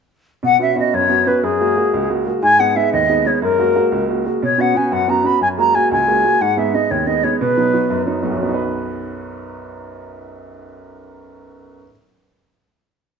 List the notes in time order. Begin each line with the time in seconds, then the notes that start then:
0.43 B2 F#5
0.59 B3 C#4 F#4 E5
0.76 B3 C#4 F#4 D#5
0.93 F#2 C#5
1.09 B3 C#4 F#4
1.27 B3 C#4 F#4 B4
1.43 F#2 G#4
1.60 G#3 A#3 F#4
1.76 G#3 A#3 F#4
1.94 C#2
2.09 G#3 A#3 F#4
2.26 G#3 A#3 F#4
2.42 G#2 G#5
2.59 G#3 B3 D#4 F#5
2.76 G#3 B3 D#4 E5
2.93 D#2 D#5
3.09 G#3 B3 D#4
3.25 G#3 B3 D#4 C#5
3.42 F#2 A#4
3.59 G#3 A#3 F#4
3.75 G#3 A#3 F#4
3.92 C#2
4.08 G#3 A#3 F#4
4.26 G#3 A#3 F#4
4.43 B2 C#5
4.58 B3 C#4 F#4 F#5
4.75 B3 C#4 F#4 G#5
4.87 G#5
4.92 F#2 F#5
5.08 B3 C#4 F#4 A#5
5.24 B3 C#4 F#4 B5
5.41 F#2 G#5
5.58 G#3 A#3 F#4 A#5
5.74 G#3 A#3 F#4 G#5
5.92 C#2 G#5
6.07 G#3 A#3 F#4
6.24 G#3 A#3 F#4
6.41 G#2 F#5
6.57 G#3 B3 D#4 E5
6.74 G#3 B3 D#4 D#5
6.91 D#2 C#5
7.07 G#3 B3 D#4 D#5
7.23 G#3 B3 D#4 C#5
7.40 B2 B4
7.57 F#3 B3 D#4
7.73 F#3 B3 D#4
7.90 F#2
8.06 F#3 B3 D#4
8.23 B1 F#3 B3 D#4
8.31 F#2
8.37 F#3
8.43 B3
8.48 D#4
8.54 B4